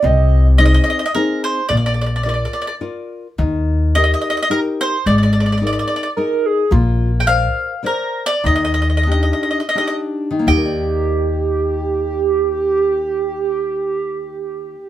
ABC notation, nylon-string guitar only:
X:1
M:3/4
L:1/8
Q:"Swing" 1/4=106
K:Eb
V:1 name="Nylon-string guitar"
C,2 [CEA]2 [CEA]2 | B,2 [FBd]2 [FBd]2 | E,2 [EGB]2 [EGB]2 | A,2 [EAB]2 [EAB]2 |
B,2 [Bcd]2 [Bcd]2 | E,2 [DEG]2 [DEG]2 | [E,B,EBd]6- | [E,B,EBd]6 |]